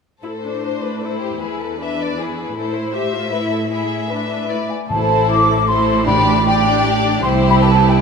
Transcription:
0.22 cello section A2, viola section E4, violin section A4 C5
0.44 viola section D4
0.62 violin section C5
0.82 violin section B4
1.01 viola section E4, violin section A4 C5
1.21 violin section G4
1.41 cello section E2, viola section E4, violin section G#4 B4
1.60 violin section A4
1.79 viola section D4, violin section B4 E5
2.00 violin section D5
2.18 viola section E4, violin section G#4 B4
2.56 cello section A2, viola section E4, violin section A4 C5
2.73 violin section C5
2.96 viola section G4, violin section E5
3.14 viola section F4
3.32 viola section E4, violin section B4
3.51 violin section A4
3.70 viola section E4, violin section G#4 E5
4.09 viola section D4, violin section B4
4.30 viola section D4
4.49 viola section E4, violin section B4 D5, flute section E5
4.69 flute section G#5
4.89 double bass section A1, cello section A2, timpani A2, viola section E4, violin section A4 C5, flute section A5
5.29 flute section D6
5.68 viola section E4, violin section A4 C5, flute section C6
6.07 timpani A2, viola section D4, violin section G4 D5, flute section B5
6.46 viola section D4, violin section G4 D5, flute section G5
7.23 cello section C2, double bass section C2, viola section E4, violin section G4 C5, flute section C6
7.49 flute section B5
7.62 violin section B4, flute section A5
7.89 flute section G5

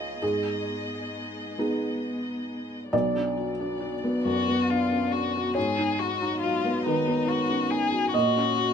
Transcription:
Already playing: felt piano G#3 D#4 G#4 D#5 F5, string section C#4 G#4 D#5
0.22 felt piano G#2 G#4, string section B3
1.58 felt piano B3 D#4 G#4
2.91 felt piano B1 D5, string section F#3 B3 D5
3.15 felt piano D4
3.37 felt piano F#4
3.60 felt piano D4
3.80 felt piano F#4
4.04 felt piano B3
4.25 felt piano F#2, violin F#4
4.48 felt piano B3
4.69 felt piano D4, violin F4
4.92 felt piano C#4
5.12 felt piano D4, violin F#4
5.35 felt piano F#4
5.55 felt piano G#2 C#5, violin G#4, string section D#5
5.78 felt piano D#4
5.98 violin F#4, felt piano F#4
6.22 felt piano D#4
6.40 felt piano F#3, violin F4
6.65 felt piano B3
6.85 felt piano D#3 B4, violin D#4
7.07 felt piano B3
7.28 felt piano D#4, violin F#4
7.50 felt piano C#4
7.70 felt piano D#4, violin G#4
7.92 felt piano F#4
8.13 felt piano A#2 D#5, string section A#3 F#4 C#5, violin F#4
8.36 felt piano C#4
8.57 felt piano F#4

